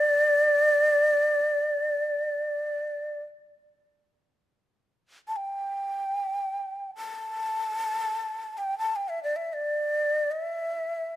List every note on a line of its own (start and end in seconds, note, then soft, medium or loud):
0.00 3.22 D5 medium
5.28 5.38 A5 soft
5.36 6.95 G5 medium
6.96 8.59 A5 medium
8.58 8.78 G5 medium
8.78 8.97 A5 medium
8.96 9.10 G5 medium
9.09 9.23 E5 medium
9.23 9.38 D5 medium
9.36 9.55 E5 medium
9.53 10.33 D5 medium
10.31 11.16 E5 medium